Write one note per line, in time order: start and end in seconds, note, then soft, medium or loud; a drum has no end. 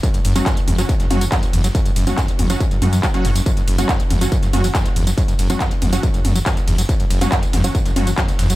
0.03 0.09 F#2 medium
0.03 kick loud
0.03 closed hi-hat medium
0.03 tambourine medium
0.14 0.20 F#2 medium
0.14 closed hi-hat medium
0.14 tambourine soft
0.25 0.42 F#1 loud
0.25 0.34 F#2 medium
0.25 closed hi-hat medium
0.25 open hi-hat loud
0.25 ride medium
0.36 0.48 F#3 loud
0.36 0.39 F#3 medium
0.36 0.48 C#4 medium
0.36 0.48 F#4 loud
0.36 closed hi-hat medium
0.36 mid tom medium
0.36 tambourine medium
0.46 0.59 F#2 medium
0.46 kick loud
0.46 snare loud
0.46 clap loud
0.46 closed hi-hat medium
0.46 tambourine medium
0.57 0.61 F#1 loud
0.57 closed hi-hat medium
0.57 tambourine soft
0.68 0.84 F#1 medium
0.68 0.77 E2 loud
0.68 closed hi-hat medium
0.68 open hi-hat medium
0.68 mid tom medium
0.68 ride medium
0.78 0.91 F#3 medium
0.78 0.82 F#3 medium
0.78 0.91 C#4 medium
0.78 0.91 F#4 medium
0.78 closed hi-hat medium
0.78 tambourine medium
0.89 0.95 F#2 medium
0.89 kick loud
0.89 closed hi-hat medium
0.89 tambourine medium
1.00 1.08 F#1 loud
1.00 1.06 F#2 medium
1.00 snare soft
1.00 closed hi-hat medium
1.00 tambourine soft
1.10 1.27 F#1 medium
1.10 1.19 F#2 medium
1.10 1.23 F#3 loud
1.10 1.23 C#4 medium
1.10 1.23 F#4 loud
1.10 closed hi-hat medium
1.10 open hi-hat loud
1.10 mid tom loud
1.10 ride medium
1.21 1.25 F#3 medium
1.21 closed hi-hat medium
1.21 tambourine medium
1.32 1.44 F#2 medium
1.32 kick loud
1.32 snare loud
1.32 clap loud
1.32 closed hi-hat medium
1.32 tambourine medium
1.43 1.46 F#1 loud
1.43 snare soft
1.43 closed hi-hat medium
1.43 tambourine soft
1.53 1.70 F#1 loud
1.53 1.62 E2 loud
1.53 closed hi-hat medium
1.53 open hi-hat medium
1.53 ride medium
1.64 1.68 F#3 medium
1.64 snare soft
1.64 closed hi-hat medium
1.64 tambourine medium
1.75 1.81 F#2 medium
1.75 kick loud
1.75 closed hi-hat medium
1.75 tambourine medium
1.86 1.91 F#2 medium
1.86 closed hi-hat medium
1.86 tambourine soft
1.96 2.13 F#1 loud
1.96 2.05 F#2 medium
1.96 closed hi-hat medium
1.96 open hi-hat loud
1.96 ride medium
2.07 2.10 F#3 medium
2.07 2.19 F#3 medium
2.07 2.19 C#4 medium
2.07 2.19 F#4 loud
2.07 closed hi-hat medium
2.07 closed hi-hat soft
2.07 mid tom loud
2.07 tambourine medium
2.18 2.30 F#2 medium
2.18 kick loud
2.18 snare loud
2.18 clap loud
2.18 closed hi-hat medium
2.18 tambourine medium
2.28 2.32 F#1 loud
2.28 closed hi-hat medium
2.28 closed hi-hat soft
2.28 tambourine soft
2.39 2.56 F#1 medium
2.39 2.48 E2 loud
2.39 closed hi-hat medium
2.39 open hi-hat loud
2.39 mid tom medium
2.39 ride medium
2.50 2.62 F#3 loud
2.50 2.53 F#3 medium
2.50 2.62 C#4 medium
2.50 2.62 F#4 loud
2.50 closed hi-hat medium
2.50 tambourine medium
2.60 2.66 F#2 medium
2.60 kick loud
2.60 closed hi-hat medium
2.60 tambourine medium
2.71 2.80 F#1 loud
2.71 2.77 F#2 medium
2.71 closed hi-hat medium
2.71 tambourine soft
2.82 2.99 F#2 loud
2.82 2.88 F#2 loud
2.82 2.94 F#3 medium
2.82 2.94 C#4 medium
2.82 2.94 F#4 medium
2.82 closed hi-hat medium
2.82 open hi-hat loud
2.82 mid tom loud
2.82 ride medium
2.93 3.02 F#2 medium
2.93 closed hi-hat medium
2.93 tambourine medium
3.03 3.07 F#3 medium
3.03 kick loud
3.03 snare loud
3.03 clap loud
3.03 closed hi-hat medium
3.03 tambourine medium
3.14 3.34 F#3 medium
3.14 3.26 F#3 medium
3.14 3.34 C#4 medium
3.14 3.34 F#4 loud
3.14 snare soft
3.14 closed hi-hat medium
3.14 tambourine soft
3.25 3.42 F#1 loud
3.25 3.31 F#2 medium
3.25 closed hi-hat medium
3.25 open hi-hat loud
3.25 ride medium
3.36 3.41 F#2 medium
3.36 snare soft
3.36 closed hi-hat medium
3.36 tambourine medium
3.46 3.52 F#2 medium
3.46 kick loud
3.46 closed hi-hat medium
3.46 tambourine medium
3.57 3.63 F#2 medium
3.57 closed hi-hat medium
3.57 tambourine soft
3.68 3.84 F#1 loud
3.68 3.77 F#2 medium
3.68 closed hi-hat medium
3.68 open hi-hat loud
3.68 ride medium
3.78 3.91 F#3 loud
3.78 3.82 F#3 medium
3.78 3.91 C#4 medium
3.78 3.91 F#4 loud
3.78 closed hi-hat medium
3.78 mid tom medium
3.78 tambourine medium
3.89 4.01 F#2 medium
3.89 kick loud
3.89 snare loud
3.89 clap loud
3.89 closed hi-hat medium
3.89 tambourine medium
4.00 4.03 F#1 loud
4.00 closed hi-hat medium
4.00 tambourine soft
4.10 4.27 F#1 medium
4.10 4.19 E2 loud
4.10 closed hi-hat medium
4.10 open hi-hat loud
4.10 mid tom loud
4.10 ride medium
4.21 4.34 F#3 medium
4.21 4.25 F#3 medium
4.21 4.34 C#4 medium
4.21 4.34 F#4 medium
4.21 closed hi-hat medium
4.21 tambourine medium
4.32 4.38 F#2 medium
4.32 kick loud
4.32 closed hi-hat medium
4.32 tambourine medium
4.43 4.51 F#1 loud
4.43 4.49 F#2 medium
4.43 snare medium
4.43 closed hi-hat medium
4.43 tambourine soft
4.53 4.70 F#1 medium
4.53 4.62 F#2 medium
4.53 4.66 F#3 loud
4.53 4.66 C#4 medium
4.53 4.66 F#4 loud
4.53 closed hi-hat medium
4.53 open hi-hat loud
4.53 mid tom loud
4.53 ride medium
4.64 4.68 F#3 medium
4.64 closed hi-hat medium
4.64 tambourine medium
4.75 4.87 F#2 medium
4.75 kick loud
4.75 snare loud
4.75 clap loud
4.75 closed hi-hat medium
4.75 tambourine medium
4.85 4.89 F#1 loud
4.85 snare soft
4.85 closed hi-hat medium
4.85 tambourine soft
4.96 5.13 F#1 loud
4.96 5.05 E2 loud
4.96 closed hi-hat medium
4.96 open hi-hat medium
4.96 ride medium
5.07 5.10 F#3 medium
5.07 snare soft
5.07 closed hi-hat medium
5.07 tambourine medium
5.18 5.24 F#2 medium
5.18 kick loud
5.18 closed hi-hat medium
5.18 tambourine medium
5.28 5.34 F#2 medium
5.28 closed hi-hat medium
5.28 tambourine soft
5.39 5.56 F#1 loud
5.39 5.48 F#2 medium
5.39 closed hi-hat medium
5.39 open hi-hat loud
5.39 ride medium
5.50 5.62 F#3 medium
5.50 5.53 F#3 medium
5.50 5.62 C#4 medium
5.50 5.62 F#4 loud
5.50 closed hi-hat medium
5.50 closed hi-hat soft
5.50 mid tom medium
5.50 tambourine medium
5.60 5.73 F#2 medium
5.60 kick loud
5.60 snare loud
5.60 clap loud
5.60 closed hi-hat medium
5.60 tambourine medium
5.71 5.75 F#1 loud
5.71 closed hi-hat medium
5.71 closed hi-hat soft
5.71 tambourine soft
5.82 5.99 F#1 medium
5.82 5.91 E2 loud
5.82 closed hi-hat medium
5.82 open hi-hat medium
5.82 mid tom loud
5.82 ride medium
5.93 5.96 F#3 medium
5.93 6.05 F#3 loud
5.93 6.05 C#4 medium
5.93 6.05 F#4 loud
5.93 closed hi-hat medium
5.93 tambourine medium
6.03 6.09 F#2 medium
6.03 kick loud
6.03 closed hi-hat medium
6.03 tambourine medium
6.14 6.22 F#1 loud
6.14 6.20 F#2 medium
6.14 closed hi-hat medium
6.14 tambourine soft
6.25 6.42 F#1 medium
6.25 6.34 F#2 medium
6.25 closed hi-hat medium
6.25 open hi-hat loud
6.25 mid tom loud
6.25 ride medium
6.35 6.39 F#3 medium
6.35 closed hi-hat medium
6.35 tambourine medium
6.46 6.58 F#2 medium
6.46 kick loud
6.46 snare loud
6.46 clap loud
6.46 closed hi-hat medium
6.46 tambourine medium
6.57 6.60 F#1 loud
6.57 snare soft
6.57 closed hi-hat medium
6.57 tambourine soft
6.68 6.84 F#1 loud
6.68 6.76 E2 loud
6.68 closed hi-hat medium
6.68 open hi-hat medium
6.68 ride medium
6.78 6.82 F#3 medium
6.78 snare soft
6.78 closed hi-hat medium
6.78 tambourine medium
6.89 6.95 F#2 medium
6.89 kick loud
6.89 closed hi-hat medium
6.89 tambourine medium
7.00 7.06 F#2 medium
7.00 closed hi-hat medium
7.00 tambourine soft
7.10 7.27 F#1 loud
7.10 7.19 F#2 medium
7.10 closed hi-hat medium
7.10 open hi-hat loud
7.10 ride medium
7.21 7.25 F#3 medium
7.21 7.34 F#3 loud
7.21 7.34 C#4 medium
7.21 7.34 F#4 loud
7.21 closed hi-hat medium
7.21 mid tom medium
7.21 tambourine medium
7.32 7.44 F#2 medium
7.32 kick loud
7.32 snare loud
7.32 clap loud
7.32 closed hi-hat medium
7.32 tambourine medium
7.43 7.46 F#1 loud
7.43 closed hi-hat medium
7.43 tambourine soft
7.53 7.70 F#1 medium
7.53 7.62 E2 loud
7.53 snare loud
7.53 closed hi-hat medium
7.53 open hi-hat medium
7.53 mid tom medium
7.53 ride medium
7.64 7.76 F#3 medium
7.64 7.68 F#3 medium
7.64 7.76 C#4 medium
7.64 7.76 F#4 medium
7.64 closed hi-hat medium
7.64 tambourine medium
7.75 7.81 F#2 medium
7.75 kick loud
7.75 closed hi-hat medium
7.75 tambourine medium
7.86 7.94 F#1 loud
7.86 7.91 F#2 medium
7.86 snare medium
7.86 closed hi-hat medium
7.86 tambourine soft
7.96 8.13 F#1 medium
7.96 8.05 F#2 medium
7.96 8.09 F#3 loud
7.96 8.09 C#4 medium
7.96 8.09 F#4 loud
7.96 closed hi-hat medium
7.96 open hi-hat loud
7.96 mid tom medium
7.96 ride medium
8.07 8.11 F#3 medium
8.07 closed hi-hat medium
8.07 tambourine medium
8.18 8.30 F#2 medium
8.18 kick loud
8.18 snare loud
8.18 clap loud
8.18 closed hi-hat medium
8.18 tambourine medium
8.28 8.32 F#1 loud
8.28 snare soft
8.28 closed hi-hat medium
8.28 tambourine soft
8.39 8.56 F#1 loud
8.39 8.48 E2 loud
8.39 snare loud
8.39 closed hi-hat medium
8.39 open hi-hat medium
8.39 ride medium
8.50 8.53 F#3 medium
8.50 snare soft
8.50 closed hi-hat medium
8.50 tambourine medium